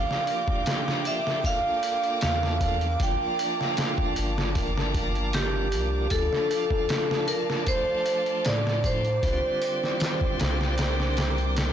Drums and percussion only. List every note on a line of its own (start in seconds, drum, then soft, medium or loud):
0.11 snare soft
0.27 open hi-hat medium
0.48 kick loud
0.66 snare loud
0.66 open hi-hat medium
0.88 snare medium
1.05 open hi-hat medium
1.27 snare soft
1.44 kick loud
1.44 open hi-hat medium
1.83 open hi-hat medium
2.04 closed hi-hat soft
2.21 snare loud
2.21 open hi-hat medium
2.43 snare soft
2.61 kick loud
2.61 open hi-hat medium
2.81 closed hi-hat soft
3.00 kick loud
3.00 open hi-hat medium
3.39 open hi-hat medium
3.61 snare soft
3.77 snare loud
3.77 open hi-hat medium
3.98 kick medium
4.16 open hi-hat medium
4.38 snare medium
4.55 kick loud
4.55 open hi-hat medium
4.78 snare soft
4.95 kick loud
4.95 open hi-hat medium
5.15 closed hi-hat soft
5.33 snare loud
5.33 open hi-hat medium
5.72 open hi-hat medium
6.10 kick loud
6.10 open hi-hat medium
6.33 snare soft
6.51 open hi-hat medium
6.71 kick loud
6.89 snare loud
6.89 open hi-hat medium
7.11 snare medium
7.28 open hi-hat medium
7.50 snare soft
7.67 kick loud
7.67 open hi-hat medium
8.06 open hi-hat medium
8.26 closed hi-hat soft
8.45 snare loud
8.45 open hi-hat medium
8.67 snare soft
8.84 kick loud
8.84 open hi-hat medium
9.05 closed hi-hat soft
9.23 kick loud
9.23 open hi-hat medium
9.62 open hi-hat medium
9.83 snare soft
10.00 snare loud
10.00 open hi-hat medium
10.21 kick loud
10.40 snare loud
10.40 open hi-hat medium
10.61 snare soft
10.78 snare loud
10.78 open hi-hat medium
11.00 snare soft
11.17 snare loud
11.17 open hi-hat medium
11.38 closed hi-hat soft
11.57 snare loud
11.57 open hi-hat medium